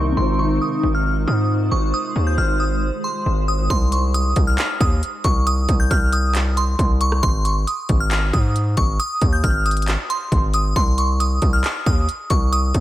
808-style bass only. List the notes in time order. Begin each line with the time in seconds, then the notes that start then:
Already playing: C2
0.17 G#1
0.83 G#1
1.27 G#2
1.72 G#1
2.16 D#2
2.38 G#1
3.26 G#1
3.70 C2
4.36 C2
4.81 D#2
5.24 C2
5.69 C2
5.91 C2
6.79 C2
7.23 G#1
7.89 G#1
8.33 G#2
8.77 G#1
9.22 D#2
9.44 G#1
10.32 G#1
10.76 C2
11.42 C2
11.86 D#2
12.30 C2
12.75 C2